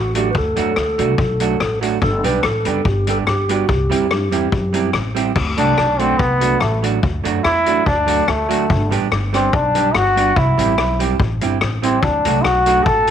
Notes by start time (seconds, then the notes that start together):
Already playing: A1 F#4
0.15 F#3 A3 D4 F#4 G4, closed hi-hat
0.31 B4
0.35 D2 A4, kick
0.56 E2 F#3 A3 D4 F#4, closed hi-hat
0.76 D2, cross-stick
0.98 C2 F#3 A3 D4 F#4, closed hi-hat
1.18 B1, kick
1.40 F#3 A3 D4 F#4, closed hi-hat
1.60 A1, muted hollow-body jazz guitar stroke, cross-stick
1.81 F#3 A3 D4 F#4, closed hi-hat
2.02 G1 A4, kick
2.23 B1 G3 B3 D4 G4 B4, closed hi-hat
2.43 A1 A4, cross-stick
2.65 F#1 G3 B3 D4 G4, closed hi-hat
2.85 G1 G4, kick
3.07 G3 B3 D4 G4 A4, closed hi-hat
3.27 G1 G4, muted hollow-body jazz guitar stroke, cross-stick
3.49 G3 B3 D4 F#4 G4, closed hi-hat
3.69 C2 G4, kick
3.90 D2 G3 C4 E4 G4, closed hi-hat
4.11 G2, cross-stick
4.31 E2 G3 C4 E4 G4, closed hi-hat
4.52 F#2, kick
4.73 G3 C4 E4 G4, closed hi-hat
4.93 A1, muted hollow-body jazz guitar stroke, cross-stick
5.15 G3 C4 E4 G4, closed hi-hat
5.35 D2, kick, crash
5.57 C2 F#3 A3 D4 F#4, closed hi-hat
5.78 B1, cross-stick
5.99 F#3 A3 C4 D4 F#4, closed hi-hat
6.19 C2 B3, kick
6.40 F#3 A3 D4 F#4, closed hi-hat
6.61 A1 A3, cross-stick
6.82 F#3 A3 D4 F#4, closed hi-hat
7.03 D2, kick
7.24 F#2 F#3 A3 D4 F#4, closed hi-hat
7.44 E2 E4, cross-stick
7.66 F#3 A3 D4 F#4, closed hi-hat
7.86 D2 D4, kick
8.06 F#3 A3 D4 F#4, closed hi-hat
8.28 D2 A3, cross-stick
8.49 F#3 A3 D4 F#4, closed hi-hat
8.70 G1, kick
8.91 A1 G3 B3 D4 G4, closed hi-hat
9.12 G1, cross-stick
9.33 G3 B3 C4 D4 G4, cross-stick, closed hi-hat
9.53 B1 D4, kick
9.75 G3 B3 D4 G4, closed hi-hat
9.95 G1 F#4, cross-stick
10.16 G3 B3 D4 G4, closed hi-hat
10.36 C2 E4, kick
10.58 A1 G3 C4 E4 G4, closed hi-hat
10.78 B1, cross-stick
10.99 G3 C4 E4 G4, closed hi-hat
11.20 A1, kick
11.41 G1 G3 C4 E4 G4, closed hi-hat
11.61 A1, cross-stick
11.82 G3 C4 E4 G4, closed hi-hat
12.03 D2 D4, kick
12.25 C2 F#3 A3 D4 F#4, closed hi-hat
12.43 B1 F#4, cross-stick
12.66 F#3 A3 D4 F#4, closed hi-hat
12.84 A1 A4, kick
13.07 closed hi-hat